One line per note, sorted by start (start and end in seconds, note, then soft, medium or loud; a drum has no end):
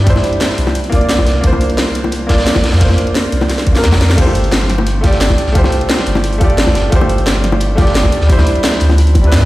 0.00 0.22 G2 loud
0.00 0.04 G3 medium
0.00 0.73 G3 medium
0.00 0.06 D4 medium
0.00 0.08 E4 medium
0.00 0.77 B4 medium
0.00 0.10 C5 loud
0.00 0.77 D5 medium
0.06 0.74 D4 medium
0.06 0.75 E4 medium
0.06 0.76 C5 loud
0.06 kick loud
0.06 closed hi-hat medium
0.16 snare soft
0.16 high bongo medium
0.24 closed hi-hat medium
0.33 closed hi-hat soft
0.40 snare loud
0.40 closed hi-hat medium
0.40 high bongo medium
0.50 snare soft
0.58 1.25 C2 medium
0.58 closed hi-hat medium
0.67 snare soft
0.67 high bongo medium
0.75 closed hi-hat medium
0.84 closed hi-hat soft
0.90 1.39 A#3 medium
0.90 1.41 D4 medium
0.90 1.42 F4 medium
0.90 kick medium
0.90 closed hi-hat medium
0.90 high bongo medium
0.95 1.43 D5 loud
1.01 closed hi-hat soft
1.09 snare loud
1.09 closed hi-hat medium
1.18 kick medium
1.18 snare soft
1.18 high bongo medium
1.26 1.42 C2 loud
1.26 snare medium
1.26 closed hi-hat medium
1.41 2.62 C2 medium
1.41 2.25 A#3 medium
1.41 2.27 D4 medium
1.41 2.28 F4 medium
1.41 kick loud
1.41 closed hi-hat medium
1.47 2.29 C5 loud
1.53 high bongo medium
1.61 closed hi-hat medium
1.70 closed hi-hat soft
1.77 snare loud
1.77 closed hi-hat medium
1.77 open hi-hat medium
1.77 high bongo medium
1.95 closed hi-hat medium
2.04 high bongo medium
2.12 closed hi-hat medium
2.27 2.77 A#3 medium
2.27 2.78 D4 medium
2.27 2.79 F4 medium
2.27 kick medium
2.27 snare loud
2.27 closed hi-hat medium
2.27 open hi-hat medium
2.27 high bongo medium
2.32 2.80 D5 loud
2.37 snare loud
2.37 closed hi-hat soft
2.37 open hi-hat medium
2.46 snare loud
2.46 snare medium
2.46 closed hi-hat medium
2.46 open hi-hat medium
2.55 kick medium
2.55 snare loud
2.55 open hi-hat medium
2.55 high bongo medium
2.63 snare medium
2.63 closed hi-hat medium
2.63 open hi-hat medium
2.72 2.97 F2 loud
2.72 snare loud
2.72 open hi-hat medium
2.78 3.63 A#3 medium
2.78 3.64 D4 medium
2.78 3.65 F4 medium
2.78 kick loud
2.78 snare loud
2.78 closed hi-hat medium
2.78 open hi-hat medium
2.84 3.66 C5 loud
2.90 snare medium
2.90 open hi-hat medium
2.90 high bongo medium
2.98 closed hi-hat medium
3.07 closed hi-hat soft
3.15 snare loud
3.15 closed hi-hat medium
3.15 high bongo medium
3.24 closed hi-hat soft
3.32 3.85 C2 medium
3.32 closed hi-hat medium
3.41 snare soft
3.41 high bongo medium
3.50 snare medium
3.50 closed hi-hat medium
3.58 snare medium
3.58 closed hi-hat medium
3.58 closed hi-hat soft
3.66 kick medium
3.66 closed hi-hat medium
3.66 high bongo medium
3.73 4.15 A#3 medium
3.73 4.16 D4 medium
3.73 4.16 F4 medium
3.73 snare medium
3.73 closed hi-hat medium
3.73 closed hi-hat soft
3.78 4.18 A#4 medium
3.84 4.17 F2 medium
3.84 snare loud
3.84 snare medium
3.84 closed hi-hat medium
3.84 open hi-hat medium
3.92 kick medium
3.92 snare medium
3.92 open hi-hat medium
3.92 high bongo medium
4.01 snare medium
4.01 closed hi-hat medium
4.10 snare medium
4.15 5.37 G1 loud
4.15 4.99 A3 medium
4.15 5.01 F4 medium
4.15 5.02 G4 medium
4.15 kick loud
4.15 closed hi-hat medium
4.15 crash medium
4.21 5.03 C5 loud
4.27 high bongo medium
4.35 closed hi-hat medium
4.44 closed hi-hat soft
4.52 snare loud
4.52 closed hi-hat medium
4.52 open hi-hat medium
4.52 high bongo medium
4.61 snare soft
4.70 snare soft
4.70 closed hi-hat medium
4.78 high bongo medium
4.86 closed hi-hat medium
5.01 5.51 A3 medium
5.01 5.53 F4 medium
5.01 5.54 G4 medium
5.01 kick loud
5.01 snare soft
5.01 closed hi-hat medium
5.01 high bongo medium
5.07 5.55 D5 loud
5.12 snare soft
5.12 closed hi-hat soft
5.20 snare loud
5.20 closed hi-hat medium
5.30 kick medium
5.30 snare soft
5.30 high bongo medium
5.38 closed hi-hat medium
5.47 5.71 C2 loud
5.47 snare soft
5.52 6.37 A3 medium
5.52 6.39 F4 medium
5.52 6.39 G4 medium
5.52 kick loud
5.52 closed hi-hat medium
5.58 6.40 C5 loud
5.64 snare medium
5.64 high bongo medium
5.72 closed hi-hat medium
5.81 closed hi-hat soft
5.89 snare loud
5.89 closed hi-hat medium
5.89 high bongo medium
5.98 snare medium
5.98 snare soft
6.06 6.74 G1 medium
6.06 closed hi-hat medium
6.15 snare soft
6.15 high bongo medium
6.24 closed hi-hat medium
6.33 closed hi-hat soft
6.38 6.88 A3 medium
6.38 6.90 F4 medium
6.38 6.91 G4 medium
6.38 kick loud
6.38 closed hi-hat medium
6.38 high bongo medium
6.44 6.92 D5 loud
6.50 closed hi-hat soft
6.58 snare loud
6.58 closed hi-hat medium
6.67 kick medium
6.67 snare soft
6.67 high bongo medium
6.75 6.91 G1 medium
6.75 snare medium
6.75 closed hi-hat medium
6.90 8.11 G1 medium
6.90 7.74 A3 medium
6.90 7.76 F4 medium
6.90 7.77 G4 medium
6.90 kick loud
6.90 closed hi-hat medium
6.95 7.78 C5 loud
7.01 high bongo loud
7.09 closed hi-hat medium
7.18 closed hi-hat soft
7.27 snare loud
7.27 closed hi-hat medium
7.27 open hi-hat medium
7.27 high bongo medium
7.35 snare soft
7.44 snare soft
7.44 closed hi-hat medium
7.52 high bongo loud
7.60 closed hi-hat medium
7.75 8.26 A3 medium
7.75 8.27 F4 medium
7.75 8.28 G4 medium
7.75 kick loud
7.75 snare soft
7.75 closed hi-hat medium
7.75 high bongo medium
7.81 8.29 D5 loud
7.87 snare soft
7.87 closed hi-hat soft
7.95 snare loud
7.95 closed hi-hat medium
8.03 kick medium
8.03 snare soft
8.03 high bongo medium
8.12 closed hi-hat medium
8.21 8.45 D2 loud
8.21 snare soft
8.27 9.12 G3 medium
8.27 9.13 D4 medium
8.27 9.14 E4 medium
8.27 kick loud
8.27 closed hi-hat medium
8.32 9.15 C5 loud
8.38 snare medium
8.38 high bongo medium
8.47 closed hi-hat medium
8.56 closed hi-hat soft
8.63 snare loud
8.63 closed hi-hat medium
8.63 high bongo medium
8.72 snare soft
8.80 9.34 D2 medium
8.80 closed hi-hat medium
8.89 snare soft
8.89 high bongo medium
8.98 closed hi-hat medium
9.07 closed hi-hat soft
9.15 kick loud
9.15 closed hi-hat medium
9.15 high bongo medium
9.21 9.45 G3 medium
9.21 9.45 D4 medium
9.21 9.45 E4 medium
9.21 closed hi-hat soft
9.27 9.45 B4 medium
9.32 9.45 G2 medium
9.32 snare loud
9.32 closed hi-hat medium
9.41 kick medium
9.41 snare soft
9.41 high bongo medium